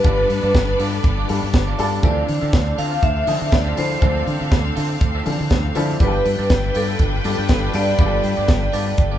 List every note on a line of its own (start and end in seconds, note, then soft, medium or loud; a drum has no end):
0.00 0.03 G3 medium
0.00 1.99 G3 medium
0.00 0.94 G3 medium
0.00 0.04 B3 medium
0.00 1.99 B3 medium
0.00 0.95 B3 medium
0.00 0.27 B3 medium
0.00 0.04 D4 medium
0.00 5.96 D4 medium
0.00 0.04 F4 medium
0.00 2.06 G4 soft
0.00 0.05 A4 medium
0.00 1.99 A4 medium
0.00 0.76 B4 loud
0.00 1.99 B4 medium
0.00 1.99 D5 medium
0.04 0.24 G1 loud
0.04 0.95 D4 medium
0.04 0.27 F4 medium
0.04 0.95 F4 medium
0.04 2.02 G4 medium
0.04 0.28 A4 medium
0.04 0.95 A4 medium
0.04 0.28 D5 medium
0.04 kick loud
0.04 closed hi-hat medium
0.29 0.40 G2 loud
0.29 muted clean electric guitar stroke soft
0.29 open hi-hat medium
0.43 0.52 G2 loud
0.43 0.58 B3 medium
0.43 0.57 F4 medium
0.43 0.57 A4 medium
0.43 0.57 D5 medium
0.55 0.74 G1 loud
0.55 kick loud
0.55 snare loud
0.55 closed hi-hat medium
0.68 muted clean electric guitar stroke soft
0.79 0.98 G2 loud
0.79 0.99 B3 medium
0.79 0.93 F4 medium
0.79 0.92 A4 medium
0.79 0.92 D5 medium
0.79 open hi-hat medium
0.93 muted clean electric guitar stroke soft
1.04 1.23 G1 medium
1.04 muted clean electric guitar stroke soft
1.04 kick loud
1.04 closed hi-hat medium
1.18 1.27 B3 medium
1.18 1.28 F4 medium
1.18 1.28 A4 medium
1.18 1.28 D5 medium
1.28 1.40 G2 loud
1.28 1.74 G3 medium
1.28 1.74 B3 medium
1.28 1.74 D4 medium
1.28 1.74 F4 medium
1.28 1.75 A4 medium
1.28 muted clean electric guitar stroke soft
1.28 open hi-hat medium
1.42 1.52 G2 medium
1.42 muted clean electric guitar stroke soft
1.53 1.73 G1 loud
1.53 muted clean electric guitar stroke soft
1.53 kick loud
1.53 snare loud
1.53 closed hi-hat medium
1.67 1.78 B3 medium
1.67 1.78 F4 medium
1.67 1.78 A4 medium
1.67 1.79 D5 medium
1.78 1.98 G2 loud
1.78 2.01 G3 medium
1.78 2.01 B3 medium
1.78 1.95 B3 soft
1.78 2.01 D4 medium
1.78 1.92 F4 medium
1.78 2.02 F4 medium
1.78 1.92 A4 medium
1.78 2.02 A4 loud
1.78 1.91 D5 medium
1.78 open hi-hat medium
1.92 muted clean electric guitar stroke soft
2.02 2.22 D2 loud
2.02 5.97 D3 medium
2.02 2.94 E3 medium
2.02 2.93 F3 medium
2.02 2.94 C4 medium
2.02 2.26 C4 medium
2.02 5.97 C4 medium
2.02 2.94 D4 medium
2.02 2.27 F4 medium
2.02 2.27 A4 medium
2.02 5.97 A4 medium
2.02 2.94 A4 medium
2.02 2.75 D5 loud
2.02 2.27 E5 medium
2.02 5.97 F5 medium
2.02 kick loud
2.02 closed hi-hat medium
2.27 2.39 D3 loud
2.27 muted clean electric guitar stroke soft
2.27 open hi-hat medium
2.41 2.51 D3 loud
2.41 2.52 C4 soft
2.41 2.52 F4 medium
2.41 2.52 A4 medium
2.41 2.52 E5 medium
2.53 2.72 D2 loud
2.53 muted clean electric guitar stroke soft
2.53 kick loud
2.53 snare loud
2.53 closed hi-hat medium
2.67 muted clean electric guitar stroke soft
2.78 2.97 D3 medium
2.78 2.91 C4 medium
2.78 2.91 F4 medium
2.78 2.91 A4 medium
2.78 2.91 E5 medium
2.78 3.04 F5 loud
2.78 open hi-hat medium
2.91 3.06 C4 soft
2.91 3.06 F4 medium
2.91 3.06 A4 medium
2.91 3.05 F5 medium
3.03 3.22 D2 loud
3.03 3.54 E5 loud
3.03 kick loud
3.03 closed hi-hat medium
3.16 muted clean electric guitar stroke soft
3.27 3.38 D3 loud
3.27 3.73 E3 soft
3.27 3.72 F3 medium
3.27 3.48 C4 medium
3.27 3.73 C4 medium
3.27 3.73 D4 medium
3.27 3.40 F4 medium
3.27 3.40 A4 medium
3.27 3.73 A4 medium
3.27 3.39 E5 medium
3.27 open hi-hat medium
3.41 3.50 D3 medium
3.41 muted clean electric guitar stroke medium
3.51 3.71 D2 loud
3.51 3.76 D5 medium
3.51 muted clean electric guitar stroke soft
3.51 kick loud
3.51 snare loud
3.51 closed hi-hat medium
3.65 3.75 C4 medium
3.65 3.75 F4 medium
3.65 3.75 A4 medium
3.65 3.76 E5 medium
3.76 3.97 D3 loud
3.76 3.99 F3 medium
3.76 3.99 C4 medium
3.76 4.00 D4 medium
3.76 4.00 E4 medium
3.76 4.00 A4 medium
3.76 4.24 C5 medium
3.76 muted clean electric guitar stroke soft
3.76 open hi-hat medium
3.90 muted clean electric guitar stroke soft
4.01 4.21 D2 medium
4.01 4.92 E3 medium
4.01 4.92 F3 medium
4.01 4.25 C4 medium
4.01 4.92 C4 medium
4.01 4.92 D4 medium
4.01 4.25 F4 medium
4.01 4.25 A4 medium
4.01 4.93 A4 medium
4.01 4.25 E5 medium
4.01 kick loud
4.01 closed hi-hat medium
4.27 4.38 D3 loud
4.27 muted clean electric guitar stroke soft
4.27 open hi-hat medium
4.40 4.49 D3 medium
4.40 4.55 C4 soft
4.40 4.55 F4 medium
4.40 4.55 A4 medium
4.40 4.54 E5 medium
4.52 4.71 D2 loud
4.52 kick loud
4.52 snare loud
4.52 closed hi-hat medium
4.65 muted clean electric guitar stroke soft
4.76 4.96 D3 loud
4.76 4.96 C4 medium
4.76 4.89 F4 medium
4.76 4.89 A4 medium
4.76 4.89 E5 medium
4.76 open hi-hat medium
4.90 muted clean electric guitar stroke soft
5.00 5.20 D2 medium
5.00 muted clean electric guitar stroke soft
5.00 kick loud
5.00 closed hi-hat medium
5.15 5.25 C4 medium
5.15 5.25 F4 medium
5.15 5.25 A4 medium
5.15 5.26 E5 medium
5.25 5.37 D3 loud
5.25 5.71 E3 medium
5.25 5.71 F3 medium
5.25 5.71 C4 medium
5.25 5.71 D4 medium
5.25 5.72 A4 medium
5.25 muted clean electric guitar stroke soft
5.25 open hi-hat medium
5.39 5.49 D3 medium
5.39 muted clean electric guitar stroke soft
5.50 5.70 D2 medium
5.50 kick loud
5.50 snare loud
5.50 closed hi-hat medium
5.65 muted clean electric guitar stroke soft
5.75 5.95 D3 medium
5.75 5.98 F3 medium
5.75 5.95 C4 medium
5.75 5.98 C4 medium
5.75 5.98 D4 medium
5.75 5.99 E4 medium
5.75 5.89 F4 medium
5.75 5.88 A4 medium
5.75 5.99 A4 loud
5.75 5.88 E5 medium
5.75 open hi-hat medium
5.89 muted clean electric guitar stroke soft
6.00 6.19 G1 medium
6.00 6.91 G3 medium
6.00 9.19 G3 medium
6.00 6.23 B3 medium
6.00 6.91 B3 medium
6.00 9.19 D4 medium
6.00 6.91 D4 medium
6.00 6.23 F4 medium
6.00 6.91 F4 medium
6.00 9.19 F4 medium
6.00 6.08 G4 medium
6.00 6.23 A4 medium
6.00 9.19 A4 medium
6.00 9.19 B4 medium
6.00 6.78 B4 medium
6.00 6.24 D5 medium
6.00 9.19 G5 medium
6.00 kick loud
6.00 closed hi-hat medium
6.08 6.94 A4 medium
6.24 6.36 G2 loud
6.24 muted clean electric guitar stroke soft
6.24 open hi-hat medium
6.39 6.47 G2 medium
6.39 6.48 B3 medium
6.39 6.48 F4 medium
6.39 6.49 A4 medium
6.39 6.49 D5 medium
6.49 6.69 G1 loud
6.49 muted clean electric guitar stroke soft
6.49 kick loud
6.49 snare loud
6.49 closed hi-hat medium
6.64 muted clean electric guitar stroke soft
6.75 6.94 G2 loud
6.75 6.88 B3 medium
6.75 6.88 F4 medium
6.75 6.87 A4 medium
6.75 7.71 A4 medium
6.75 6.88 D5 medium
6.75 open hi-hat medium
6.88 7.03 B3 medium
6.88 7.03 F4 medium
6.88 7.02 A4 medium
6.88 7.02 E5 medium
6.99 7.19 G1 medium
6.99 kick medium
6.99 closed hi-hat medium
7.13 muted clean electric guitar stroke soft
7.24 7.35 G2 medium
7.24 7.69 G3 medium
7.24 7.69 B3 medium
7.24 7.44 B3 medium
7.24 7.70 D4 medium
7.24 7.38 F4 medium
7.24 7.70 F4 medium
7.24 7.38 A4 medium
7.24 7.70 A4 medium
7.24 7.37 D5 medium
7.24 open hi-hat medium
7.38 7.51 G2 medium
7.38 muted clean electric guitar stroke soft
7.49 7.68 G1 medium
7.49 muted clean electric guitar stroke soft
7.49 kick loud
7.49 snare loud
7.49 closed hi-hat medium
7.64 7.74 B3 medium
7.64 7.74 F4 medium
7.64 7.74 A4 medium
7.64 7.74 D5 medium
7.73 7.93 G2 loud
7.73 7.97 G3 medium
7.73 7.97 B3 medium
7.73 7.97 D4 medium
7.73 7.97 F4 medium
7.73 7.97 A4 medium
7.73 9.19 D5 loud
7.73 muted clean electric guitar stroke soft
7.73 open hi-hat medium
7.89 muted clean electric guitar stroke soft
7.99 8.18 G1 loud
7.99 8.89 G3 medium
7.99 8.89 B3 medium
7.99 8.22 B3 medium
7.99 8.90 D4 medium
7.99 8.23 F4 medium
7.99 8.90 F4 medium
7.99 8.06 G4 medium
7.99 8.23 A4 medium
7.99 8.23 D5 medium
7.99 kick loud
7.99 closed hi-hat medium
8.06 8.93 A4 medium
8.24 8.35 G2 medium
8.24 muted clean electric guitar stroke soft
8.24 open hi-hat medium
8.37 8.46 G2 medium
8.37 8.51 B3 medium
8.37 8.51 F4 medium
8.37 8.51 A4 medium
8.37 8.51 D5 medium
8.48 8.68 G1 loud
8.48 kick loud
8.48 snare loud
8.48 closed hi-hat medium
8.62 muted clean electric guitar stroke soft
8.72 8.92 G2 medium
8.72 8.93 B3 medium
8.72 8.87 F4 medium
8.72 8.87 A4 medium
8.72 8.86 D5 medium
8.72 open hi-hat medium
8.87 muted clean electric guitar stroke soft
8.97 9.17 G1 loud
8.97 muted clean electric guitar stroke soft
8.97 kick loud
8.97 closed hi-hat medium
9.11 9.19 B3 medium
9.11 9.19 F4 medium
9.11 9.19 A4 medium
9.11 9.19 D5 medium